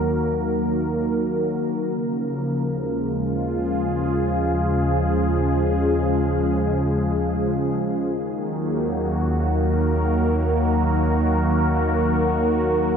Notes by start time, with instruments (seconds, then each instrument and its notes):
Already playing: synth drone D#2, analog synth pad D#3 F#3 A#3 F#4 A#4
1.87 synth drone D#2, analog synth pad C#3
2.01 analog synth pad F3
2.79 analog synth pad G#3
3.01 analog synth pad F4
3.35 analog synth pad G#4
8.10 synth drone D#2, analog synth pad D#3
8.30 analog synth pad F#3 A#3
8.70 analog synth pad F#4
9.44 analog synth pad A#4